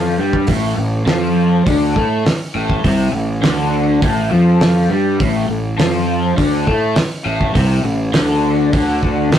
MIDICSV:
0, 0, Header, 1, 6, 480
1, 0, Start_track
1, 0, Key_signature, 0, "minor"
1, 0, Tempo, 589391
1, 394, Time_signature, 4, 2, 24, 8
1, 7646, End_track
2, 0, Start_track
2, 0, Title_t, "Overdriven electric guitar"
2, 0, Program_c, 0, 29
2, 0, Note_on_c, 0, 53, 91
2, 150, Note_off_c, 0, 53, 0
2, 158, Note_on_c, 0, 55, 99
2, 389, Note_off_c, 0, 55, 0
2, 395, Note_on_c, 0, 45, 104
2, 622, Note_off_c, 0, 45, 0
2, 632, Note_on_c, 0, 45, 73
2, 825, Note_off_c, 0, 45, 0
2, 872, Note_on_c, 0, 53, 94
2, 1347, Note_off_c, 0, 53, 0
2, 1355, Note_on_c, 0, 50, 110
2, 1588, Note_off_c, 0, 50, 0
2, 1599, Note_on_c, 0, 57, 89
2, 1830, Note_off_c, 0, 57, 0
2, 2077, Note_on_c, 0, 45, 102
2, 2309, Note_off_c, 0, 45, 0
2, 2315, Note_on_c, 0, 48, 105
2, 2541, Note_off_c, 0, 48, 0
2, 2545, Note_on_c, 0, 45, 74
2, 2743, Note_off_c, 0, 45, 0
2, 2783, Note_on_c, 0, 50, 103
2, 3263, Note_off_c, 0, 50, 0
2, 3282, Note_on_c, 0, 45, 97
2, 3507, Note_off_c, 0, 45, 0
2, 3510, Note_on_c, 0, 53, 92
2, 3986, Note_off_c, 0, 53, 0
2, 3992, Note_on_c, 0, 55, 97
2, 4227, Note_off_c, 0, 55, 0
2, 4239, Note_on_c, 0, 45, 96
2, 4448, Note_off_c, 0, 45, 0
2, 4457, Note_on_c, 0, 45, 67
2, 4659, Note_off_c, 0, 45, 0
2, 4706, Note_on_c, 0, 53, 102
2, 5182, Note_off_c, 0, 53, 0
2, 5185, Note_on_c, 0, 50, 92
2, 5423, Note_off_c, 0, 50, 0
2, 5427, Note_on_c, 0, 57, 96
2, 5664, Note_off_c, 0, 57, 0
2, 5907, Note_on_c, 0, 45, 106
2, 6140, Note_off_c, 0, 45, 0
2, 6143, Note_on_c, 0, 48, 106
2, 6381, Note_off_c, 0, 48, 0
2, 6386, Note_on_c, 0, 45, 73
2, 6581, Note_off_c, 0, 45, 0
2, 6630, Note_on_c, 0, 50, 101
2, 7103, Note_off_c, 0, 50, 0
2, 7118, Note_on_c, 0, 50, 102
2, 7586, Note_off_c, 0, 50, 0
2, 7595, Note_on_c, 0, 45, 103
2, 7646, Note_off_c, 0, 45, 0
2, 7646, End_track
3, 0, Start_track
3, 0, Title_t, "Fingered electric bass"
3, 0, Program_c, 1, 33
3, 0, Note_on_c, 1, 41, 91
3, 123, Note_off_c, 1, 41, 0
3, 149, Note_on_c, 1, 43, 85
3, 375, Note_off_c, 1, 43, 0
3, 389, Note_on_c, 1, 33, 98
3, 615, Note_off_c, 1, 33, 0
3, 633, Note_on_c, 1, 33, 82
3, 857, Note_off_c, 1, 33, 0
3, 862, Note_on_c, 1, 41, 83
3, 1317, Note_off_c, 1, 41, 0
3, 1355, Note_on_c, 1, 38, 88
3, 1579, Note_off_c, 1, 38, 0
3, 1596, Note_on_c, 1, 45, 89
3, 1820, Note_off_c, 1, 45, 0
3, 2075, Note_on_c, 1, 33, 90
3, 2299, Note_off_c, 1, 33, 0
3, 2314, Note_on_c, 1, 36, 96
3, 2538, Note_off_c, 1, 36, 0
3, 2548, Note_on_c, 1, 33, 80
3, 2775, Note_off_c, 1, 33, 0
3, 2793, Note_on_c, 1, 38, 91
3, 3242, Note_off_c, 1, 38, 0
3, 3270, Note_on_c, 1, 33, 97
3, 3496, Note_off_c, 1, 33, 0
3, 3523, Note_on_c, 1, 41, 90
3, 3967, Note_off_c, 1, 41, 0
3, 3988, Note_on_c, 1, 43, 93
3, 4215, Note_off_c, 1, 43, 0
3, 4232, Note_on_c, 1, 33, 93
3, 4457, Note_off_c, 1, 33, 0
3, 4472, Note_on_c, 1, 33, 75
3, 4697, Note_off_c, 1, 33, 0
3, 4711, Note_on_c, 1, 41, 97
3, 5160, Note_off_c, 1, 41, 0
3, 5193, Note_on_c, 1, 38, 94
3, 5417, Note_off_c, 1, 38, 0
3, 5432, Note_on_c, 1, 45, 88
3, 5656, Note_off_c, 1, 45, 0
3, 5909, Note_on_c, 1, 33, 91
3, 6134, Note_off_c, 1, 33, 0
3, 6152, Note_on_c, 1, 36, 94
3, 6375, Note_off_c, 1, 36, 0
3, 6381, Note_on_c, 1, 33, 74
3, 6609, Note_off_c, 1, 33, 0
3, 6619, Note_on_c, 1, 38, 82
3, 7072, Note_off_c, 1, 38, 0
3, 7113, Note_on_c, 1, 38, 94
3, 7558, Note_off_c, 1, 38, 0
3, 7573, Note_on_c, 1, 33, 96
3, 7646, Note_off_c, 1, 33, 0
3, 7646, End_track
4, 0, Start_track
4, 0, Title_t, "Muted fingered electric bass strokes"
4, 1835, Note_on_c, 9, 29, 42
4, 1916, Note_off_c, 9, 29, 0
4, 5675, Note_on_c, 9, 29, 40
4, 5756, Note_off_c, 9, 29, 0
4, 7646, End_track
5, 0, Start_track
5, 0, Title_t, "Muted overdriven electric guitar strokes"
5, 1835, Note_on_c, 9, 29, 52
5, 1916, Note_off_c, 9, 29, 0
5, 5667, Note_on_c, 9, 29, 52
5, 5749, Note_off_c, 9, 29, 0
5, 7646, End_track
6, 0, Start_track
6, 0, Title_t, "Drums"
6, 271, Note_on_c, 9, 36, 74
6, 352, Note_off_c, 9, 36, 0
6, 382, Note_on_c, 9, 46, 62
6, 393, Note_on_c, 9, 36, 97
6, 463, Note_off_c, 9, 46, 0
6, 474, Note_off_c, 9, 36, 0
6, 872, Note_on_c, 9, 46, 54
6, 876, Note_on_c, 9, 38, 110
6, 954, Note_off_c, 9, 46, 0
6, 958, Note_off_c, 9, 38, 0
6, 1357, Note_on_c, 9, 36, 112
6, 1359, Note_on_c, 9, 46, 57
6, 1438, Note_off_c, 9, 36, 0
6, 1441, Note_off_c, 9, 46, 0
6, 1596, Note_on_c, 9, 36, 72
6, 1678, Note_off_c, 9, 36, 0
6, 1841, Note_on_c, 9, 46, 61
6, 1845, Note_on_c, 9, 38, 108
6, 1922, Note_off_c, 9, 46, 0
6, 1926, Note_off_c, 9, 38, 0
6, 2196, Note_on_c, 9, 36, 77
6, 2277, Note_off_c, 9, 36, 0
6, 2317, Note_on_c, 9, 36, 102
6, 2318, Note_on_c, 9, 46, 61
6, 2399, Note_off_c, 9, 36, 0
6, 2400, Note_off_c, 9, 46, 0
6, 2796, Note_on_c, 9, 46, 59
6, 2800, Note_on_c, 9, 38, 114
6, 2877, Note_off_c, 9, 46, 0
6, 2881, Note_off_c, 9, 38, 0
6, 3276, Note_on_c, 9, 36, 110
6, 3278, Note_on_c, 9, 46, 58
6, 3358, Note_off_c, 9, 36, 0
6, 3359, Note_off_c, 9, 46, 0
6, 3753, Note_on_c, 9, 46, 57
6, 3757, Note_on_c, 9, 38, 112
6, 3834, Note_off_c, 9, 46, 0
6, 3838, Note_off_c, 9, 38, 0
6, 4236, Note_on_c, 9, 36, 121
6, 4238, Note_on_c, 9, 46, 57
6, 4317, Note_off_c, 9, 36, 0
6, 4319, Note_off_c, 9, 46, 0
6, 4716, Note_on_c, 9, 46, 57
6, 4721, Note_on_c, 9, 38, 114
6, 4798, Note_off_c, 9, 46, 0
6, 4802, Note_off_c, 9, 38, 0
6, 5196, Note_on_c, 9, 36, 109
6, 5197, Note_on_c, 9, 46, 58
6, 5278, Note_off_c, 9, 36, 0
6, 5279, Note_off_c, 9, 46, 0
6, 5435, Note_on_c, 9, 36, 73
6, 5516, Note_off_c, 9, 36, 0
6, 5667, Note_on_c, 9, 46, 63
6, 5671, Note_on_c, 9, 38, 113
6, 5748, Note_off_c, 9, 46, 0
6, 5752, Note_off_c, 9, 38, 0
6, 6033, Note_on_c, 9, 36, 77
6, 6114, Note_off_c, 9, 36, 0
6, 6151, Note_on_c, 9, 36, 106
6, 6151, Note_on_c, 9, 46, 62
6, 6232, Note_off_c, 9, 46, 0
6, 6233, Note_off_c, 9, 36, 0
6, 6625, Note_on_c, 9, 46, 59
6, 6629, Note_on_c, 9, 38, 104
6, 6707, Note_off_c, 9, 46, 0
6, 6711, Note_off_c, 9, 38, 0
6, 7110, Note_on_c, 9, 46, 57
6, 7112, Note_on_c, 9, 36, 110
6, 7192, Note_off_c, 9, 46, 0
6, 7193, Note_off_c, 9, 36, 0
6, 7353, Note_on_c, 9, 36, 66
6, 7434, Note_off_c, 9, 36, 0
6, 7591, Note_on_c, 9, 46, 52
6, 7595, Note_on_c, 9, 38, 112
6, 7646, Note_off_c, 9, 38, 0
6, 7646, Note_off_c, 9, 46, 0
6, 7646, End_track
0, 0, End_of_file